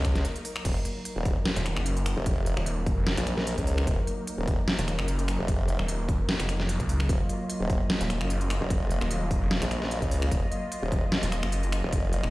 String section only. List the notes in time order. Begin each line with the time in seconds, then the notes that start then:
Already playing: F#3 A#3 D#4 A#4
0.65 F#3 A#3 D#4 A#4
7.09 F4 D#5